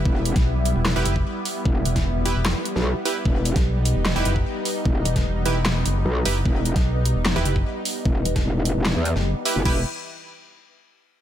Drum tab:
CC |----------------|----------------|----------------|----------------|
HH |--xx--x---x---o-|--xx--x---x---o-|--xx--x---x---o-|--xx--x---x---o-|
CP |--------x-------|--------x-------|--------x-------|--------x-------|
SD |---o----o-------|---o----o--o----|---o----o-------|---o----o-------|
BD |o--o-------o----|o--o------------|o--o-------o----|o--o------------|

CC |----------------|----------------|x---------------|
HH |--xx--x---x---o-|--xx--x---x---o-|----------------|
CP |--------x-------|--------x-------|----------------|
SD |---o----o-------|---o----o--o----|----------------|
BD |o--o-------o----|o--o------------|o---------------|